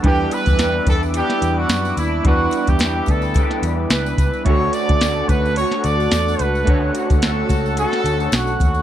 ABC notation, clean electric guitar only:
X:1
M:4/4
L:1/8
Q:"Swing 16ths" 1/4=108
K:D
V:1 name="Clean electric guitar"
[E,B,DG]2 [E,B,DG]2 [E,B,D]4 | [E,B,D]2 [E,B,DG]2 [E,B,DG]4 | [D,A,CF]2 [D,A,CF]2 [D,A,F]4 | [D,A,CF]2 [D,A,CF]2 [D,A,CF]4 |]